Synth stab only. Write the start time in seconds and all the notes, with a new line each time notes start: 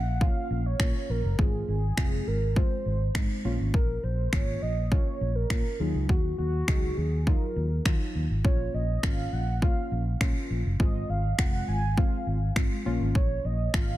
0.21 A#3 C#4 F4
0.80 A#3 C#4 F4
1.39 G#3 C4 F4
1.98 G#3 C4 F4
2.56 G#3 C4 F4
3.15 G#3 C4 D#4
3.45 A#3 C#4 F4
4.33 A#3 C#4 F4
4.92 A#3 C#4 F4
5.51 A#3 C#4 F4
5.80 F#3 D#4 F4
6.68 F#3 D#4 G#4
7.27 F#3 D#4 F4
7.86 F#3 D#4 F4
8.44 A#3 C#4 F4
9.03 A#3 C#4 F4
9.62 A#3 C#4 F4
10.21 A#3 C#4 F4
10.80 G#3 C4 F4
11.39 G#3 C4 F4
11.97 G#3 C4 F4
12.56 G#3 C4 F4
12.85 A#3 C#4 F4
13.74 A#3 C#4 F4